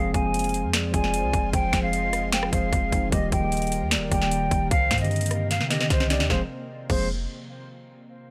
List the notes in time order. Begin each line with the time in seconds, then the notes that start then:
Already playing: F1 F3 G#3 C4 F4 G#4 C5 F5
0.14 F1 F5 G#5, kick, closed hi-hat
0.22 F3 G#3 C4
0.27 G#4
0.34 closed hi-hat
0.39 closed hi-hat
0.44 closed hi-hat
0.49 closed hi-hat
0.54 closed hi-hat
0.64 F2
0.73 D5, finger snap, snare, closed hi-hat
0.91 F1 F3 G#3 C4 G#5, kick, closed hi-hat
0.96 G#4
1.04 snare
1.14 closed hi-hat
1.23 C2
1.33 F1, kick, closed hi-hat
1.53 F1 C5 G5, kick, closed hi-hat
1.73 F1, finger snap, kick, snare, closed hi-hat
1.81 F3 G#3 C4 F5
1.85 G#4
1.93 D#5, closed hi-hat
2.13 cross-stick, closed hi-hat
2.33 F5 G5, finger snap, snare, closed hi-hat
2.43 cross-stick
2.50 F1 F3 G#3 C4 C5 F5, kick, closed hi-hat
2.55 G#4
2.73 F1, kick, closed hi-hat
2.90 F1 F3 G#3 C4, kick, closed hi-hat
2.95 D#4
3.10 D#1 D#3 G3 A#3 G4 A#4 D#5, kick, closed hi-hat
3.14 G4
3.32 D#1 D#5 G5, kick, closed hi-hat
3.40 D#3 G3 A#3
3.44 G4
3.52 closed hi-hat
3.57 closed hi-hat
3.62 closed hi-hat
3.67 closed hi-hat
3.72 closed hi-hat
3.82 D#2
3.91 D5, finger snap, snare, closed hi-hat
3.97 D#1
4.09 D#1 D#3 G3 A#3 G5, kick, closed hi-hat
4.14 G4
4.22 snare
4.31 closed hi-hat
4.51 D#1, kick, closed hi-hat
4.71 C2 C3 C4 C5 F5, kick, closed hi-hat
4.91 G2, finger snap, kick, snare, closed hi-hat
4.98 D#3 C4 D#5, closed hi-hat
5.02 D3 G4, closed hi-hat
5.11 D#5, closed hi-hat
5.16 closed hi-hat
5.21 closed hi-hat
5.26 closed hi-hat
5.31 cross-stick, closed hi-hat
5.50 F5, snare, closed hi-hat
5.60 C3, snare
5.68 D3 D#3 C4 D#5, snare, closed hi-hat
5.73 G4
5.80 snare
5.90 C2 C5, kick, snare, closed hi-hat
6.00 snare
6.08 D#3 C4 D4 D5, snare, closed hi-hat
6.13 G4
6.20 D#2, snare, closed hi-hat
6.30 F1 F3 G#3 C4 G#4 C5 F5, kick, snare
6.90 F1 F3 G#3 C4 G#4 C5 F5, kick, crash